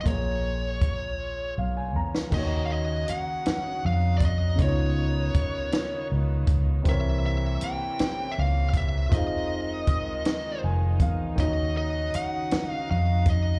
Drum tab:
CC |------------|x-----------|------------|------------|
HH |x---x-------|----x-x---x-|x---x-x---x-|x---x-x---x-|
SD |-----------o|------o-----|------o-----|------o-----|
BD |o---o-------|o---------o-|o---o-----o-|o---------o-|

CC |------------|------------|
HH |x---x-x---x-|x---x-x---x-|
SD |------o-----|------o-----|
BD |o---o-----o-|o---------o-|